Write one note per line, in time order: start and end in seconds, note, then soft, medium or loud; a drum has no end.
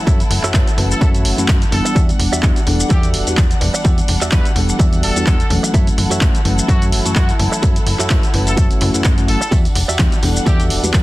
0.00 0.51 E3 medium
0.00 0.51 F#3 medium
0.00 0.52 A3 medium
0.00 0.52 C#4 medium
0.00 1.93 E4 medium
0.00 0.52 A4 medium
0.00 1.93 A4 medium
0.00 9.48 F#5 medium
0.07 0.23 F#2 loud
0.07 0.20 F#4 loud
0.07 0.20 A4 loud
0.07 0.20 C#5 loud
0.07 0.21 E5 loud
0.07 kick loud
0.07 closed hi-hat medium
0.07 shaker medium
0.20 closed hi-hat medium
0.20 shaker soft
0.30 0.39 F#1 medium
0.30 muted clean electric guitar stroke soft
0.30 open hi-hat loud
0.43 0.52 F#2 soft
0.43 0.73 F#4 medium
0.43 0.73 A4 medium
0.43 0.73 C#5 medium
0.43 0.73 E5 loud
0.43 clap soft
0.43 closed hi-hat soft
0.43 shaker medium
0.54 0.63 F#2 medium
0.54 0.67 E3 medium
0.54 0.67 F#3 medium
0.54 0.68 A3 medium
0.54 0.68 C#4 medium
0.54 0.68 F#4 medium
0.54 kick loud
0.54 clap loud
0.54 closed hi-hat medium
0.54 shaker medium
0.67 closed hi-hat soft
0.67 shaker soft
0.76 0.94 F#1 medium
0.76 1.34 E3 medium
0.76 1.35 F#3 medium
0.76 1.35 A3 medium
0.76 1.35 C#4 medium
0.76 1.35 B4 medium
0.76 open hi-hat loud
0.91 0.98 A4 medium
0.91 shaker medium
1.01 1.26 F#2 loud
1.01 1.38 F#4 loud
1.01 1.10 A4 medium
1.01 1.38 A4 medium
1.01 1.38 C#5 medium
1.01 1.38 E5 medium
1.01 kick loud
1.01 closed hi-hat medium
1.01 shaker medium
1.15 closed hi-hat medium
1.15 shaker soft
1.25 1.34 F#1 medium
1.25 open hi-hat loud
1.38 1.47 F#2 soft
1.38 1.57 E3 medium
1.38 1.57 F#3 medium
1.38 1.57 A3 medium
1.38 1.57 C#4 medium
1.38 1.57 F#4 medium
1.38 closed hi-hat soft
1.38 shaker medium
1.48 1.65 F#2 medium
1.48 kick loud
1.48 clap loud
1.48 closed hi-hat medium
1.48 shaker medium
1.62 closed hi-hat soft
1.62 shaker soft
1.71 1.81 F#1 medium
1.71 2.40 E3 medium
1.71 2.40 G3 medium
1.71 2.41 B3 medium
1.71 2.41 D4 medium
1.71 2.01 A4 medium
1.71 muted clean electric guitar stroke soft
1.71 open hi-hat loud
1.85 muted clean electric guitar stroke medium
1.85 closed hi-hat soft
1.85 shaker medium
1.95 2.12 E2 loud
1.95 5.71 G3 medium
1.95 5.71 D4 medium
1.95 2.09 F#4 loud
1.95 2.09 G4 loud
1.95 2.09 D5 loud
1.95 2.09 E5 loud
1.95 kick loud
1.95 closed hi-hat medium
1.95 shaker medium
2.09 closed hi-hat medium
2.09 shaker soft
2.19 2.28 E1 medium
2.19 muted clean electric guitar stroke soft
2.19 open hi-hat loud
2.32 2.41 E2 soft
2.32 2.61 F#4 medium
2.32 2.61 G4 medium
2.32 2.62 D5 medium
2.32 2.62 E5 loud
2.32 closed hi-hat soft
2.32 shaker medium
2.43 2.52 E2 medium
2.43 2.57 E3 medium
2.43 2.57 G3 medium
2.43 2.57 B3 medium
2.43 2.57 D4 medium
2.43 2.57 F#4 medium
2.43 kick loud
2.43 clap loud
2.43 closed hi-hat medium
2.43 shaker medium
2.56 closed hi-hat medium
2.56 shaker soft
2.66 2.83 E1 medium
2.66 3.24 E3 medium
2.66 3.24 G3 medium
2.66 3.24 B3 medium
2.66 3.24 D4 medium
2.66 3.25 A4 medium
2.66 open hi-hat medium
2.80 shaker medium
2.89 3.16 E2 loud
2.89 3.27 F#4 loud
2.89 3.27 G4 medium
2.89 3.05 G4 medium
2.89 3.27 D5 medium
2.89 3.27 E5 medium
2.89 kick loud
2.89 closed hi-hat medium
2.89 shaker medium
3.03 closed hi-hat medium
3.03 shaker soft
3.14 3.23 E1 medium
3.14 open hi-hat loud
3.27 3.36 E2 soft
3.27 3.46 E3 medium
3.27 3.46 G3 medium
3.27 3.46 B3 medium
3.27 3.46 D4 medium
3.27 3.46 F#4 medium
3.27 closed hi-hat soft
3.27 shaker medium
3.37 3.54 E2 loud
3.37 kick loud
3.37 clap loud
3.37 closed hi-hat medium
3.37 shaker medium
3.51 closed hi-hat medium
3.51 shaker soft
3.60 3.70 E1 medium
3.60 4.29 E3 medium
3.60 4.29 G3 medium
3.60 4.30 B3 medium
3.60 4.30 D4 medium
3.60 muted clean electric guitar stroke soft
3.60 open hi-hat loud
3.74 muted clean electric guitar stroke medium
3.74 shaker medium
3.84 4.01 E2 loud
3.84 3.98 F#4 loud
3.84 3.98 G4 loud
3.84 3.98 D5 loud
3.84 3.98 E5 loud
3.84 kick loud
3.84 closed hi-hat medium
3.84 shaker medium
3.98 closed hi-hat medium
3.98 shaker soft
4.08 4.17 E1 medium
4.08 muted clean electric guitar stroke soft
4.08 open hi-hat loud
4.21 4.30 E2 soft
4.21 4.51 F#4 medium
4.21 4.51 G4 medium
4.21 4.51 D5 medium
4.21 4.51 E5 loud
4.21 clap soft
4.21 closed hi-hat soft
4.21 shaker medium
4.31 4.41 E2 medium
4.31 4.45 E3 medium
4.31 4.45 G3 medium
4.31 4.45 B3 medium
4.31 4.45 D4 medium
4.31 4.46 F#4 medium
4.31 4.46 B4 loud
4.31 kick loud
4.31 clap loud
4.31 closed hi-hat medium
4.31 shaker medium
4.45 closed hi-hat medium
4.45 shaker soft
4.55 4.72 E1 medium
4.55 5.13 E3 medium
4.55 5.13 G3 medium
4.55 5.13 B3 medium
4.55 5.13 D4 medium
4.55 5.13 A4 medium
4.55 open hi-hat medium
4.69 shaker medium
4.79 5.04 E2 loud
4.79 5.16 F#4 loud
4.79 5.16 G4 medium
4.79 5.16 D5 medium
4.79 5.16 E5 loud
4.79 kick loud
4.79 closed hi-hat medium
4.79 shaker medium
4.93 closed hi-hat medium
4.93 shaker soft
5.03 5.12 E1 medium
5.03 5.50 A4 loud
5.03 open hi-hat loud
5.16 5.25 E2 soft
5.16 5.35 E3 medium
5.16 5.35 G3 medium
5.16 5.35 B3 medium
5.16 5.35 D4 medium
5.16 5.35 F#4 loud
5.16 closed hi-hat soft
5.16 shaker medium
5.27 5.43 E2 medium
5.27 kick loud
5.27 clap loud
5.27 closed hi-hat medium
5.27 shaker medium
5.40 closed hi-hat medium
5.40 shaker soft
5.49 5.59 E1 medium
5.49 6.18 E3 medium
5.49 6.19 F#3 medium
5.49 6.19 A3 medium
5.49 6.19 C#4 medium
5.49 6.19 A4 medium
5.49 muted clean electric guitar stroke soft
5.49 open hi-hat medium
5.63 muted clean electric guitar stroke medium
5.63 closed hi-hat soft
5.63 shaker medium
5.74 5.90 F#2 loud
5.74 9.48 E4 medium
5.74 5.87 F#4 loud
5.74 5.87 A4 loud
5.74 9.48 A4 medium
5.74 5.87 C#5 loud
5.74 5.87 E5 loud
5.74 kick loud
5.74 closed hi-hat medium
5.74 shaker medium
5.87 closed hi-hat medium
5.87 shaker soft
5.98 6.06 F#1 medium
5.98 muted clean electric guitar stroke soft
5.98 open hi-hat loud
6.10 6.19 F#2 soft
6.10 6.40 F#4 medium
6.10 6.40 A4 medium
6.10 6.40 C#5 medium
6.10 6.40 E5 medium
6.10 closed hi-hat soft
6.10 shaker medium
6.21 6.30 F#2 medium
6.21 6.34 E3 medium
6.21 6.34 F#3 medium
6.21 6.34 A3 medium
6.21 6.34 C#4 medium
6.21 6.34 F#4 medium
6.21 kick loud
6.21 clap loud
6.21 closed hi-hat medium
6.21 shaker medium
6.35 closed hi-hat medium
6.35 shaker soft
6.44 6.61 F#1 medium
6.44 7.02 E3 medium
6.44 7.02 F#3 medium
6.44 7.02 A3 medium
6.44 7.02 C#4 medium
6.44 7.03 B4 medium
6.44 open hi-hat medium
6.59 shaker medium
6.68 6.94 F#2 loud
6.68 7.05 F#4 loud
6.68 6.83 F#4 medium
6.68 7.05 A4 medium
6.68 7.05 C#5 medium
6.68 7.05 E5 medium
6.68 kick loud
6.68 closed hi-hat medium
6.68 shaker medium
6.82 closed hi-hat medium
6.82 shaker soft
6.92 7.01 F#1 medium
6.92 open hi-hat loud
7.05 7.14 F#2 soft
7.05 7.24 E3 medium
7.05 7.24 F#3 medium
7.05 7.24 A3 medium
7.05 7.24 C#4 medium
7.05 7.24 F#4 loud
7.05 closed hi-hat soft
7.05 shaker medium
7.16 7.32 F#2 loud
7.16 7.30 F#4 medium
7.16 kick loud
7.16 clap loud
7.16 closed hi-hat medium
7.16 shaker medium
7.29 closed hi-hat medium
7.29 shaker soft
7.39 7.48 F#1 medium
7.39 8.08 E3 medium
7.39 8.08 F#3 medium
7.39 8.08 A3 medium
7.39 8.08 C#4 medium
7.39 8.08 A4 medium
7.39 muted clean electric guitar stroke soft
7.39 open hi-hat medium
7.52 muted clean electric guitar stroke loud
7.52 shaker medium
7.62 7.79 F#2 loud
7.62 7.76 F#4 loud
7.62 7.76 A4 loud
7.62 7.76 C#5 loud
7.62 7.76 E5 loud
7.62 kick loud
7.62 closed hi-hat medium
7.62 shaker medium
7.76 closed hi-hat medium
7.76 shaker soft
7.86 7.95 F#1 medium
7.86 muted clean electric guitar stroke soft
7.86 open hi-hat loud
7.99 8.08 F#2 soft
7.99 8.28 F#4 medium
7.99 8.29 A4 medium
7.99 8.29 C#5 medium
7.99 8.29 E5 medium
7.99 clap soft
7.99 closed hi-hat soft
7.99 shaker medium
8.10 8.19 F#2 medium
8.10 8.24 E3 medium
8.10 8.24 F#3 medium
8.10 8.24 A3 medium
8.10 8.24 C#4 medium
8.10 8.24 F#4 medium
8.10 kick loud
8.10 clap loud
8.10 closed hi-hat medium
8.10 shaker medium
8.23 closed hi-hat medium
8.23 shaker soft
8.34 8.59 F#1 medium
8.34 8.79 E3 medium
8.34 8.79 F#3 medium
8.34 8.79 A3 medium
8.34 8.80 C#4 medium
8.34 8.80 B4 medium
8.34 open hi-hat medium
8.47 8.54 A4 medium
8.47 closed hi-hat soft
8.47 shaker medium
8.57 8.70 F#2 medium
8.57 8.94 F#4 loud
8.57 8.94 A4 medium
8.57 8.66 A4 medium
8.57 8.94 C#5 medium
8.57 8.94 E5 loud
8.57 kick loud
8.57 closed hi-hat medium
8.57 shaker medium
8.71 8.79 F#1 soft
8.71 closed hi-hat medium
8.71 shaker soft
8.81 8.90 F#1 loud
8.81 8.92 E3 medium
8.81 8.92 F#3 medium
8.81 8.93 A3 medium
8.81 8.92 C#4 medium
8.81 8.93 F#4 medium
8.81 open hi-hat loud
8.94 9.03 F#2 soft
8.94 9.13 E3 loud
8.94 9.13 F#3 medium
8.94 9.13 A3 medium
8.94 9.13 C#4 medium
8.94 9.13 A4 loud
8.94 closed hi-hat soft
8.94 shaker medium
9.04 9.30 F#2 medium
9.04 kick loud
9.04 clap loud
9.04 closed hi-hat medium
9.04 shaker medium
9.18 9.36 E3 medium
9.18 9.36 F#3 medium
9.18 9.37 A3 medium
9.18 9.37 C#4 medium
9.18 9.37 F#4 loud
9.18 closed hi-hat medium
9.18 shaker soft
9.28 9.37 F#1 loud
9.28 9.57 A4 medium
9.28 muted clean electric guitar stroke soft
9.28 open hi-hat medium
9.41 muted clean electric guitar stroke medium
9.41 shaker medium
9.51 9.68 E2 loud
9.51 11.03 G3 medium
9.51 11.03 D4 medium
9.51 9.65 F#4 loud
9.51 9.65 G4 loud
9.51 9.65 D5 medium
9.51 9.65 E5 loud
9.51 11.03 F#5 medium
9.51 kick loud
9.51 closed hi-hat medium
9.51 tambourine medium
9.51 shaker medium
9.65 closed hi-hat medium
9.65 tambourine soft
9.65 shaker soft
9.75 9.84 E1 medium
9.75 muted clean electric guitar stroke soft
9.75 open hi-hat loud
9.75 tambourine loud
9.88 9.97 E2 soft
9.88 10.17 F#4 medium
9.88 10.18 G4 medium
9.88 10.18 D5 medium
9.88 10.18 E5 loud
9.88 closed hi-hat soft
9.88 tambourine soft
9.88 shaker medium
9.99 10.08 E2 medium
9.99 10.12 E3 medium
9.99 10.12 G3 medium
9.99 10.12 B3 medium
9.99 10.13 D4 medium
9.99 10.13 F#4 medium
9.99 kick loud
9.99 clap loud
9.99 closed hi-hat medium
9.99 tambourine medium
9.99 low conga medium
9.99 shaker medium
10.12 closed hi-hat medium
10.12 tambourine soft
10.12 shaker soft
10.22 10.39 E1 medium
10.22 10.80 E3 medium
10.22 10.80 G3 medium
10.22 10.80 B3 medium
10.22 10.81 D4 medium
10.22 10.81 A4 medium
10.22 open hi-hat medium
10.22 tambourine loud
10.37 tambourine soft
10.37 shaker medium
10.46 10.71 E2 loud
10.46 10.83 F#4 loud
10.46 10.83 G4 medium
10.46 10.61 G4 medium
10.46 10.83 D5 medium
10.46 10.83 E5 loud
10.46 kick loud
10.46 closed hi-hat medium
10.46 tambourine medium
10.46 shaker medium
10.60 closed hi-hat medium
10.60 tambourine soft
10.60 shaker soft
10.70 10.79 E1 medium
10.70 open hi-hat loud
10.70 tambourine loud
10.83 10.91 E2 soft
10.83 11.02 E3 medium
10.83 11.02 G3 medium
10.83 11.02 B3 medium
10.83 11.02 D4 medium
10.83 11.02 F#4 loud
10.83 closed hi-hat soft
10.83 tambourine soft
10.83 high conga medium
10.83 shaker medium
10.94 11.03 E2 medium
10.94 kick loud
10.94 clap loud
10.94 closed hi-hat medium
10.94 tambourine medium
10.94 high conga medium
10.94 shaker medium